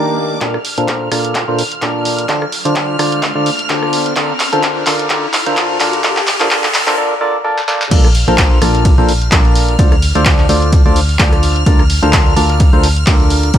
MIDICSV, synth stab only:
0, 0, Header, 1, 2, 480
1, 0, Start_track
1, 0, Key_signature, -2, "major"
1, 0, Tempo, 468750
1, 424, Time_signature, 4, 2, 24, 8
1, 13906, End_track
2, 0, Start_track
2, 0, Title_t, "Synth stab"
2, 0, Program_c, 0, 62
2, 0, Note_on_c, 0, 51, 74
2, 0, Note_on_c, 0, 62, 67
2, 0, Note_on_c, 0, 63, 65
2, 0, Note_on_c, 0, 67, 68
2, 0, Note_on_c, 0, 70, 66
2, 0, Note_on_c, 0, 74, 83
2, 398, Note_off_c, 0, 51, 0
2, 398, Note_off_c, 0, 67, 0
2, 398, Note_off_c, 0, 74, 0
2, 399, Note_off_c, 0, 62, 0
2, 399, Note_off_c, 0, 63, 0
2, 399, Note_off_c, 0, 70, 0
2, 422, Note_on_c, 0, 70, 78
2, 423, Note_on_c, 0, 46, 84
2, 423, Note_on_c, 0, 62, 77
2, 423, Note_on_c, 0, 65, 81
2, 423, Note_on_c, 0, 69, 81
2, 423, Note_on_c, 0, 74, 92
2, 590, Note_off_c, 0, 70, 0
2, 591, Note_off_c, 0, 46, 0
2, 591, Note_off_c, 0, 62, 0
2, 591, Note_off_c, 0, 65, 0
2, 591, Note_off_c, 0, 69, 0
2, 591, Note_off_c, 0, 74, 0
2, 796, Note_on_c, 0, 69, 87
2, 797, Note_on_c, 0, 46, 94
2, 797, Note_on_c, 0, 62, 87
2, 797, Note_on_c, 0, 65, 83
2, 797, Note_on_c, 0, 70, 85
2, 797, Note_on_c, 0, 72, 97
2, 1118, Note_off_c, 0, 46, 0
2, 1118, Note_off_c, 0, 62, 0
2, 1118, Note_off_c, 0, 65, 0
2, 1118, Note_off_c, 0, 69, 0
2, 1118, Note_off_c, 0, 70, 0
2, 1118, Note_off_c, 0, 72, 0
2, 1142, Note_on_c, 0, 74, 81
2, 1143, Note_on_c, 0, 46, 78
2, 1143, Note_on_c, 0, 65, 70
2, 1143, Note_on_c, 0, 69, 72
2, 1143, Note_on_c, 0, 70, 68
2, 1144, Note_on_c, 0, 62, 69
2, 1484, Note_off_c, 0, 46, 0
2, 1484, Note_off_c, 0, 65, 0
2, 1484, Note_off_c, 0, 74, 0
2, 1485, Note_off_c, 0, 62, 0
2, 1485, Note_off_c, 0, 69, 0
2, 1485, Note_off_c, 0, 70, 0
2, 1516, Note_on_c, 0, 65, 83
2, 1516, Note_on_c, 0, 70, 83
2, 1516, Note_on_c, 0, 72, 98
2, 1517, Note_on_c, 0, 46, 93
2, 1517, Note_on_c, 0, 62, 82
2, 1517, Note_on_c, 0, 69, 80
2, 1666, Note_off_c, 0, 46, 0
2, 1666, Note_off_c, 0, 62, 0
2, 1666, Note_off_c, 0, 65, 0
2, 1666, Note_off_c, 0, 69, 0
2, 1666, Note_off_c, 0, 70, 0
2, 1666, Note_off_c, 0, 72, 0
2, 1863, Note_on_c, 0, 46, 74
2, 1863, Note_on_c, 0, 62, 69
2, 1863, Note_on_c, 0, 65, 70
2, 1863, Note_on_c, 0, 69, 68
2, 1863, Note_on_c, 0, 70, 69
2, 1863, Note_on_c, 0, 74, 82
2, 2318, Note_off_c, 0, 46, 0
2, 2318, Note_off_c, 0, 62, 0
2, 2318, Note_off_c, 0, 65, 0
2, 2318, Note_off_c, 0, 69, 0
2, 2318, Note_off_c, 0, 70, 0
2, 2318, Note_off_c, 0, 74, 0
2, 2342, Note_on_c, 0, 50, 86
2, 2343, Note_on_c, 0, 62, 79
2, 2343, Note_on_c, 0, 65, 79
2, 2343, Note_on_c, 0, 69, 79
2, 2343, Note_on_c, 0, 72, 80
2, 2343, Note_on_c, 0, 74, 96
2, 2510, Note_off_c, 0, 50, 0
2, 2510, Note_off_c, 0, 72, 0
2, 2511, Note_off_c, 0, 62, 0
2, 2511, Note_off_c, 0, 65, 0
2, 2511, Note_off_c, 0, 69, 0
2, 2511, Note_off_c, 0, 74, 0
2, 2715, Note_on_c, 0, 50, 95
2, 2715, Note_on_c, 0, 62, 85
2, 2715, Note_on_c, 0, 65, 83
2, 2715, Note_on_c, 0, 69, 84
2, 2715, Note_on_c, 0, 72, 85
2, 2715, Note_on_c, 0, 74, 103
2, 3037, Note_off_c, 0, 50, 0
2, 3037, Note_off_c, 0, 62, 0
2, 3037, Note_off_c, 0, 65, 0
2, 3037, Note_off_c, 0, 69, 0
2, 3037, Note_off_c, 0, 72, 0
2, 3037, Note_off_c, 0, 74, 0
2, 3061, Note_on_c, 0, 50, 76
2, 3061, Note_on_c, 0, 65, 69
2, 3061, Note_on_c, 0, 69, 70
2, 3062, Note_on_c, 0, 62, 70
2, 3062, Note_on_c, 0, 72, 71
2, 3062, Note_on_c, 0, 74, 87
2, 3403, Note_off_c, 0, 50, 0
2, 3403, Note_off_c, 0, 65, 0
2, 3404, Note_off_c, 0, 62, 0
2, 3404, Note_off_c, 0, 69, 0
2, 3404, Note_off_c, 0, 72, 0
2, 3404, Note_off_c, 0, 74, 0
2, 3435, Note_on_c, 0, 65, 86
2, 3436, Note_on_c, 0, 50, 89
2, 3436, Note_on_c, 0, 62, 83
2, 3436, Note_on_c, 0, 69, 81
2, 3436, Note_on_c, 0, 72, 84
2, 3436, Note_on_c, 0, 74, 97
2, 3586, Note_off_c, 0, 50, 0
2, 3586, Note_off_c, 0, 62, 0
2, 3586, Note_off_c, 0, 65, 0
2, 3586, Note_off_c, 0, 69, 0
2, 3586, Note_off_c, 0, 72, 0
2, 3586, Note_off_c, 0, 74, 0
2, 3781, Note_on_c, 0, 50, 77
2, 3781, Note_on_c, 0, 65, 68
2, 3782, Note_on_c, 0, 62, 70
2, 3782, Note_on_c, 0, 69, 70
2, 3782, Note_on_c, 0, 72, 74
2, 3782, Note_on_c, 0, 74, 84
2, 4237, Note_off_c, 0, 50, 0
2, 4237, Note_off_c, 0, 62, 0
2, 4237, Note_off_c, 0, 65, 0
2, 4237, Note_off_c, 0, 69, 0
2, 4237, Note_off_c, 0, 72, 0
2, 4237, Note_off_c, 0, 74, 0
2, 4261, Note_on_c, 0, 74, 88
2, 4262, Note_on_c, 0, 50, 80
2, 4262, Note_on_c, 0, 62, 72
2, 4262, Note_on_c, 0, 65, 76
2, 4262, Note_on_c, 0, 69, 74
2, 4262, Note_on_c, 0, 70, 76
2, 4430, Note_off_c, 0, 50, 0
2, 4430, Note_off_c, 0, 62, 0
2, 4430, Note_off_c, 0, 65, 0
2, 4430, Note_off_c, 0, 69, 0
2, 4430, Note_off_c, 0, 70, 0
2, 4430, Note_off_c, 0, 74, 0
2, 4634, Note_on_c, 0, 70, 77
2, 4634, Note_on_c, 0, 72, 96
2, 4635, Note_on_c, 0, 50, 91
2, 4635, Note_on_c, 0, 62, 76
2, 4635, Note_on_c, 0, 65, 81
2, 4635, Note_on_c, 0, 69, 80
2, 4957, Note_off_c, 0, 50, 0
2, 4957, Note_off_c, 0, 62, 0
2, 4957, Note_off_c, 0, 65, 0
2, 4957, Note_off_c, 0, 69, 0
2, 4957, Note_off_c, 0, 70, 0
2, 4957, Note_off_c, 0, 72, 0
2, 4983, Note_on_c, 0, 62, 64
2, 4983, Note_on_c, 0, 69, 62
2, 4983, Note_on_c, 0, 70, 66
2, 4984, Note_on_c, 0, 50, 71
2, 4984, Note_on_c, 0, 65, 63
2, 4984, Note_on_c, 0, 74, 81
2, 5206, Note_off_c, 0, 62, 0
2, 5206, Note_off_c, 0, 69, 0
2, 5206, Note_off_c, 0, 70, 0
2, 5207, Note_off_c, 0, 50, 0
2, 5207, Note_off_c, 0, 65, 0
2, 5207, Note_off_c, 0, 74, 0
2, 5223, Note_on_c, 0, 50, 85
2, 5224, Note_on_c, 0, 62, 78
2, 5224, Note_on_c, 0, 65, 80
2, 5224, Note_on_c, 0, 69, 77
2, 5224, Note_on_c, 0, 70, 81
2, 5224, Note_on_c, 0, 74, 94
2, 5391, Note_off_c, 0, 50, 0
2, 5391, Note_off_c, 0, 62, 0
2, 5391, Note_off_c, 0, 65, 0
2, 5391, Note_off_c, 0, 69, 0
2, 5391, Note_off_c, 0, 70, 0
2, 5391, Note_off_c, 0, 74, 0
2, 5595, Note_on_c, 0, 62, 82
2, 5595, Note_on_c, 0, 65, 85
2, 5595, Note_on_c, 0, 69, 83
2, 5595, Note_on_c, 0, 70, 81
2, 5595, Note_on_c, 0, 72, 97
2, 5596, Note_on_c, 0, 50, 94
2, 5917, Note_off_c, 0, 50, 0
2, 5917, Note_off_c, 0, 62, 0
2, 5917, Note_off_c, 0, 65, 0
2, 5917, Note_off_c, 0, 69, 0
2, 5917, Note_off_c, 0, 70, 0
2, 5917, Note_off_c, 0, 72, 0
2, 5943, Note_on_c, 0, 69, 71
2, 5943, Note_on_c, 0, 70, 73
2, 5944, Note_on_c, 0, 50, 79
2, 5944, Note_on_c, 0, 62, 69
2, 5944, Note_on_c, 0, 65, 69
2, 5944, Note_on_c, 0, 74, 84
2, 6166, Note_off_c, 0, 62, 0
2, 6166, Note_off_c, 0, 69, 0
2, 6166, Note_off_c, 0, 70, 0
2, 6167, Note_off_c, 0, 50, 0
2, 6167, Note_off_c, 0, 65, 0
2, 6167, Note_off_c, 0, 74, 0
2, 6184, Note_on_c, 0, 50, 87
2, 6184, Note_on_c, 0, 69, 83
2, 6184, Note_on_c, 0, 70, 80
2, 6184, Note_on_c, 0, 74, 96
2, 6185, Note_on_c, 0, 62, 76
2, 6185, Note_on_c, 0, 65, 81
2, 6351, Note_off_c, 0, 50, 0
2, 6351, Note_off_c, 0, 65, 0
2, 6351, Note_off_c, 0, 69, 0
2, 6351, Note_off_c, 0, 70, 0
2, 6351, Note_off_c, 0, 74, 0
2, 6352, Note_off_c, 0, 62, 0
2, 6556, Note_on_c, 0, 50, 93
2, 6556, Note_on_c, 0, 69, 88
2, 6557, Note_on_c, 0, 62, 83
2, 6557, Note_on_c, 0, 65, 87
2, 6557, Note_on_c, 0, 70, 84
2, 6557, Note_on_c, 0, 72, 102
2, 6646, Note_off_c, 0, 50, 0
2, 6646, Note_off_c, 0, 62, 0
2, 6646, Note_off_c, 0, 65, 0
2, 6646, Note_off_c, 0, 69, 0
2, 6646, Note_off_c, 0, 70, 0
2, 6646, Note_off_c, 0, 72, 0
2, 6663, Note_on_c, 0, 50, 86
2, 6663, Note_on_c, 0, 62, 84
2, 6663, Note_on_c, 0, 65, 86
2, 6663, Note_on_c, 0, 70, 84
2, 6830, Note_off_c, 0, 62, 0
2, 6831, Note_off_c, 0, 50, 0
2, 6831, Note_off_c, 0, 65, 0
2, 6831, Note_off_c, 0, 70, 0
2, 7034, Note_on_c, 0, 62, 91
2, 7034, Note_on_c, 0, 72, 108
2, 7035, Note_on_c, 0, 50, 99
2, 7035, Note_on_c, 0, 65, 91
2, 7035, Note_on_c, 0, 69, 90
2, 7035, Note_on_c, 0, 70, 88
2, 7125, Note_off_c, 0, 62, 0
2, 7125, Note_off_c, 0, 72, 0
2, 7126, Note_off_c, 0, 50, 0
2, 7126, Note_off_c, 0, 65, 0
2, 7126, Note_off_c, 0, 69, 0
2, 7126, Note_off_c, 0, 70, 0
2, 7143, Note_on_c, 0, 62, 88
2, 7143, Note_on_c, 0, 65, 84
2, 7143, Note_on_c, 0, 69, 82
2, 7143, Note_on_c, 0, 70, 86
2, 7143, Note_on_c, 0, 74, 102
2, 7144, Note_on_c, 0, 50, 94
2, 7311, Note_off_c, 0, 50, 0
2, 7311, Note_off_c, 0, 62, 0
2, 7311, Note_off_c, 0, 65, 0
2, 7311, Note_off_c, 0, 69, 0
2, 7311, Note_off_c, 0, 70, 0
2, 7311, Note_off_c, 0, 74, 0
2, 7382, Note_on_c, 0, 50, 90
2, 7382, Note_on_c, 0, 65, 88
2, 7382, Note_on_c, 0, 69, 90
2, 7382, Note_on_c, 0, 70, 85
2, 7383, Note_on_c, 0, 62, 89
2, 7383, Note_on_c, 0, 74, 108
2, 7550, Note_off_c, 0, 50, 0
2, 7550, Note_off_c, 0, 62, 0
2, 7550, Note_off_c, 0, 65, 0
2, 7550, Note_off_c, 0, 69, 0
2, 7550, Note_off_c, 0, 70, 0
2, 7550, Note_off_c, 0, 74, 0
2, 7623, Note_on_c, 0, 50, 92
2, 7623, Note_on_c, 0, 62, 86
2, 7623, Note_on_c, 0, 65, 84
2, 7623, Note_on_c, 0, 69, 83
2, 7623, Note_on_c, 0, 70, 82
2, 7623, Note_on_c, 0, 74, 99
2, 7791, Note_off_c, 0, 50, 0
2, 7791, Note_off_c, 0, 62, 0
2, 7791, Note_off_c, 0, 65, 0
2, 7791, Note_off_c, 0, 69, 0
2, 7791, Note_off_c, 0, 70, 0
2, 7791, Note_off_c, 0, 74, 0
2, 7863, Note_on_c, 0, 50, 96
2, 7863, Note_on_c, 0, 65, 85
2, 7863, Note_on_c, 0, 69, 85
2, 7863, Note_on_c, 0, 74, 104
2, 7864, Note_on_c, 0, 62, 91
2, 7864, Note_on_c, 0, 70, 85
2, 8031, Note_off_c, 0, 50, 0
2, 8031, Note_off_c, 0, 62, 0
2, 8031, Note_off_c, 0, 65, 0
2, 8031, Note_off_c, 0, 69, 0
2, 8031, Note_off_c, 0, 70, 0
2, 8031, Note_off_c, 0, 74, 0
2, 8103, Note_on_c, 0, 69, 82
2, 8104, Note_on_c, 0, 46, 87
2, 8104, Note_on_c, 0, 62, 79
2, 8104, Note_on_c, 0, 65, 83
2, 8104, Note_on_c, 0, 70, 84
2, 8105, Note_on_c, 0, 74, 99
2, 8271, Note_off_c, 0, 46, 0
2, 8271, Note_off_c, 0, 62, 0
2, 8271, Note_off_c, 0, 65, 0
2, 8271, Note_off_c, 0, 69, 0
2, 8271, Note_off_c, 0, 70, 0
2, 8272, Note_off_c, 0, 74, 0
2, 8477, Note_on_c, 0, 46, 95
2, 8477, Note_on_c, 0, 62, 85
2, 8477, Note_on_c, 0, 65, 90
2, 8477, Note_on_c, 0, 69, 88
2, 8477, Note_on_c, 0, 70, 89
2, 8477, Note_on_c, 0, 72, 106
2, 8798, Note_off_c, 0, 46, 0
2, 8798, Note_off_c, 0, 62, 0
2, 8798, Note_off_c, 0, 65, 0
2, 8798, Note_off_c, 0, 69, 0
2, 8798, Note_off_c, 0, 70, 0
2, 8798, Note_off_c, 0, 72, 0
2, 8824, Note_on_c, 0, 46, 80
2, 8824, Note_on_c, 0, 62, 72
2, 8824, Note_on_c, 0, 65, 69
2, 8824, Note_on_c, 0, 69, 74
2, 8824, Note_on_c, 0, 70, 68
2, 8825, Note_on_c, 0, 74, 85
2, 9165, Note_off_c, 0, 46, 0
2, 9165, Note_off_c, 0, 62, 0
2, 9165, Note_off_c, 0, 65, 0
2, 9165, Note_off_c, 0, 69, 0
2, 9165, Note_off_c, 0, 70, 0
2, 9165, Note_off_c, 0, 74, 0
2, 9196, Note_on_c, 0, 46, 93
2, 9196, Note_on_c, 0, 62, 83
2, 9196, Note_on_c, 0, 65, 83
2, 9196, Note_on_c, 0, 69, 89
2, 9196, Note_on_c, 0, 70, 86
2, 9196, Note_on_c, 0, 72, 97
2, 9346, Note_off_c, 0, 46, 0
2, 9346, Note_off_c, 0, 62, 0
2, 9346, Note_off_c, 0, 65, 0
2, 9346, Note_off_c, 0, 69, 0
2, 9346, Note_off_c, 0, 70, 0
2, 9346, Note_off_c, 0, 72, 0
2, 9544, Note_on_c, 0, 46, 81
2, 9544, Note_on_c, 0, 62, 70
2, 9544, Note_on_c, 0, 65, 72
2, 9544, Note_on_c, 0, 69, 69
2, 9544, Note_on_c, 0, 70, 73
2, 9544, Note_on_c, 0, 74, 84
2, 9998, Note_off_c, 0, 46, 0
2, 9998, Note_off_c, 0, 62, 0
2, 9998, Note_off_c, 0, 65, 0
2, 9998, Note_off_c, 0, 69, 0
2, 9998, Note_off_c, 0, 70, 0
2, 9998, Note_off_c, 0, 74, 0
2, 10021, Note_on_c, 0, 69, 85
2, 10022, Note_on_c, 0, 50, 89
2, 10022, Note_on_c, 0, 62, 84
2, 10022, Note_on_c, 0, 65, 79
2, 10022, Note_on_c, 0, 72, 82
2, 10022, Note_on_c, 0, 74, 102
2, 10190, Note_off_c, 0, 50, 0
2, 10190, Note_off_c, 0, 62, 0
2, 10190, Note_off_c, 0, 65, 0
2, 10190, Note_off_c, 0, 69, 0
2, 10190, Note_off_c, 0, 72, 0
2, 10190, Note_off_c, 0, 74, 0
2, 10397, Note_on_c, 0, 50, 98
2, 10397, Note_on_c, 0, 62, 89
2, 10397, Note_on_c, 0, 65, 88
2, 10397, Note_on_c, 0, 69, 93
2, 10397, Note_on_c, 0, 72, 93
2, 10397, Note_on_c, 0, 74, 105
2, 10718, Note_off_c, 0, 50, 0
2, 10718, Note_off_c, 0, 62, 0
2, 10718, Note_off_c, 0, 65, 0
2, 10718, Note_off_c, 0, 69, 0
2, 10718, Note_off_c, 0, 72, 0
2, 10718, Note_off_c, 0, 74, 0
2, 10743, Note_on_c, 0, 69, 73
2, 10744, Note_on_c, 0, 50, 79
2, 10744, Note_on_c, 0, 62, 70
2, 10744, Note_on_c, 0, 65, 74
2, 10744, Note_on_c, 0, 72, 73
2, 10744, Note_on_c, 0, 74, 88
2, 11085, Note_off_c, 0, 50, 0
2, 11085, Note_off_c, 0, 62, 0
2, 11085, Note_off_c, 0, 65, 0
2, 11085, Note_off_c, 0, 69, 0
2, 11085, Note_off_c, 0, 72, 0
2, 11085, Note_off_c, 0, 74, 0
2, 11117, Note_on_c, 0, 50, 91
2, 11117, Note_on_c, 0, 62, 81
2, 11117, Note_on_c, 0, 65, 87
2, 11117, Note_on_c, 0, 69, 84
2, 11117, Note_on_c, 0, 72, 82
2, 11117, Note_on_c, 0, 74, 105
2, 11266, Note_off_c, 0, 62, 0
2, 11266, Note_off_c, 0, 69, 0
2, 11266, Note_off_c, 0, 72, 0
2, 11266, Note_off_c, 0, 74, 0
2, 11267, Note_off_c, 0, 50, 0
2, 11267, Note_off_c, 0, 65, 0
2, 11462, Note_on_c, 0, 72, 73
2, 11463, Note_on_c, 0, 50, 75
2, 11463, Note_on_c, 0, 62, 73
2, 11463, Note_on_c, 0, 65, 68
2, 11463, Note_on_c, 0, 69, 72
2, 11463, Note_on_c, 0, 74, 86
2, 11917, Note_off_c, 0, 72, 0
2, 11918, Note_off_c, 0, 50, 0
2, 11918, Note_off_c, 0, 62, 0
2, 11918, Note_off_c, 0, 65, 0
2, 11918, Note_off_c, 0, 69, 0
2, 11918, Note_off_c, 0, 74, 0
2, 11943, Note_on_c, 0, 50, 90
2, 11943, Note_on_c, 0, 62, 84
2, 11943, Note_on_c, 0, 65, 83
2, 11943, Note_on_c, 0, 69, 85
2, 11943, Note_on_c, 0, 70, 82
2, 11943, Note_on_c, 0, 74, 100
2, 12111, Note_off_c, 0, 50, 0
2, 12111, Note_off_c, 0, 62, 0
2, 12111, Note_off_c, 0, 65, 0
2, 12111, Note_off_c, 0, 69, 0
2, 12111, Note_off_c, 0, 70, 0
2, 12111, Note_off_c, 0, 74, 0
2, 12314, Note_on_c, 0, 70, 89
2, 12315, Note_on_c, 0, 50, 94
2, 12315, Note_on_c, 0, 62, 87
2, 12315, Note_on_c, 0, 65, 87
2, 12315, Note_on_c, 0, 69, 87
2, 12315, Note_on_c, 0, 72, 106
2, 12637, Note_off_c, 0, 50, 0
2, 12637, Note_off_c, 0, 62, 0
2, 12637, Note_off_c, 0, 65, 0
2, 12637, Note_off_c, 0, 69, 0
2, 12637, Note_off_c, 0, 70, 0
2, 12637, Note_off_c, 0, 72, 0
2, 12661, Note_on_c, 0, 74, 91
2, 12662, Note_on_c, 0, 50, 80
2, 12662, Note_on_c, 0, 62, 71
2, 12662, Note_on_c, 0, 65, 71
2, 12662, Note_on_c, 0, 69, 68
2, 12662, Note_on_c, 0, 70, 72
2, 13004, Note_off_c, 0, 50, 0
2, 13004, Note_off_c, 0, 62, 0
2, 13004, Note_off_c, 0, 65, 0
2, 13004, Note_off_c, 0, 69, 0
2, 13004, Note_off_c, 0, 70, 0
2, 13004, Note_off_c, 0, 74, 0
2, 13034, Note_on_c, 0, 70, 85
2, 13035, Note_on_c, 0, 50, 91
2, 13035, Note_on_c, 0, 62, 86
2, 13035, Note_on_c, 0, 65, 82
2, 13035, Note_on_c, 0, 69, 84
2, 13035, Note_on_c, 0, 72, 102
2, 13185, Note_off_c, 0, 50, 0
2, 13185, Note_off_c, 0, 62, 0
2, 13185, Note_off_c, 0, 65, 0
2, 13185, Note_off_c, 0, 69, 0
2, 13185, Note_off_c, 0, 70, 0
2, 13185, Note_off_c, 0, 72, 0
2, 13383, Note_on_c, 0, 69, 75
2, 13383, Note_on_c, 0, 70, 71
2, 13384, Note_on_c, 0, 50, 77
2, 13384, Note_on_c, 0, 62, 74
2, 13384, Note_on_c, 0, 65, 71
2, 13384, Note_on_c, 0, 74, 84
2, 13838, Note_off_c, 0, 50, 0
2, 13838, Note_off_c, 0, 62, 0
2, 13838, Note_off_c, 0, 65, 0
2, 13838, Note_off_c, 0, 69, 0
2, 13838, Note_off_c, 0, 70, 0
2, 13838, Note_off_c, 0, 74, 0
2, 13864, Note_on_c, 0, 51, 93
2, 13864, Note_on_c, 0, 62, 84
2, 13864, Note_on_c, 0, 63, 78
2, 13864, Note_on_c, 0, 67, 84
2, 13864, Note_on_c, 0, 70, 80
2, 13864, Note_on_c, 0, 74, 99
2, 13906, Note_off_c, 0, 51, 0
2, 13906, Note_off_c, 0, 62, 0
2, 13906, Note_off_c, 0, 63, 0
2, 13906, Note_off_c, 0, 67, 0
2, 13906, Note_off_c, 0, 70, 0
2, 13906, Note_off_c, 0, 74, 0
2, 13906, End_track
0, 0, End_of_file